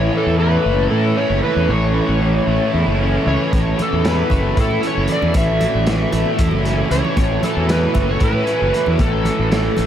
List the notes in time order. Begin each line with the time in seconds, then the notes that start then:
Already playing: A2 E3 A3 C#4 E4 A4 C#5
0.14 E3 A4
0.27 E2
0.39 E3 B4
0.66 F#1 A3
0.90 A2 E4 A4
1.17 C#4 C#5
1.30 F#1
1.43 E3 B4
1.56 E2
1.69 A1 A2 C#5
1.94 E3
2.09 A1
2.21 E3
2.47 A1 A3
2.73 E2 E4
2.86 F#1
2.99 C#4
3.26 C#2 E3 C#5
3.52 A1 A2 F#4, kick, closed hi-hat, high conga
3.66 low conga
3.78 E3, closed hi-hat, low conga
3.82 A4
3.93 E2
4.04 E3, snare, closed hi-hat
4.08 B4
4.30 F#1 A3, kick, closed hi-hat, low conga
4.43 high conga
4.56 A2 E4, kick, closed hi-hat
4.61 A4
4.70 low conga
4.81 C#4, closed hi-hat
4.87 C#5
4.97 F#1
5.08 E3, closed hi-hat
5.12 D5
5.22 E2, low conga
5.34 A1 A2 E5, kick, closed hi-hat, high conga
5.60 E3, closed hi-hat, low conga
5.75 A1
5.86 E3, snare, closed hi-hat
6.12 A1 A3, closed hi-hat, low conga
6.25 high conga
6.38 E2 E4, kick, closed hi-hat
6.51 F#1, low conga
6.64 C#4, snare, closed hi-hat
6.90 C#2 E3 C#5, closed hi-hat
7.05 low conga
7.17 A1 A2, kick, closed hi-hat, high conga
7.31 low conga
7.42 E3 A4, closed hi-hat, low conga
7.57 E2
7.68 E3 B4, snare, closed hi-hat
7.94 F#1 A3, kick, closed hi-hat, low conga
8.07 C#5, high conga
8.20 A2 E4 B4, kick, closed hi-hat
8.32 low conga
8.46 C#4, closed hi-hat
8.62 F#1
8.74 E3, closed hi-hat
8.86 E2, low conga
8.98 A1 A2 A4, kick, closed hi-hat, high conga
9.25 E3, closed hi-hat, low conga
9.39 A1
9.51 E3, snare, closed hi-hat
9.77 A1 A3, closed hi-hat, low conga